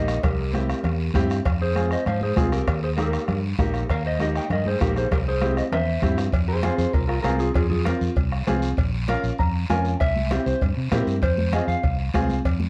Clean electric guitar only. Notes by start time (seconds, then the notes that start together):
Already playing: A#4 D#5
0.24 G4 A#4
1.62 G#4 C5
1.92 C5 D#5
2.08 C5 F5
2.23 G#4 C5
2.37 F4 G#4
2.52 G4 A#4
2.83 G#4 C5
2.98 G4 A#4
3.59 G4 A#4
3.91 A#4 F5
4.06 C5 D#5
4.21 A#4 D#5
4.36 D#5 G5
4.52 A#4 D#5
4.67 G#4 C5
4.82 G4 A#4
4.97 G#4 C5
5.12 G4 A#4
5.28 G#4 C5
5.58 C5 D#5
5.74 C5 E5
6.48 G#4 C5
6.64 G#4 C5
6.77 G#4 C5
6.93 F4 A#4
7.08 F4 A#4
7.22 F4 A#4
7.39 F4 G#4
7.54 F4 G#4
7.70 F4 G#4
7.85 F4
9.09 F5
9.39 A#5
9.70 G#5
10.00 E5
10.46 C5
10.92 A#4
11.22 C5
11.53 D#5
11.68 F5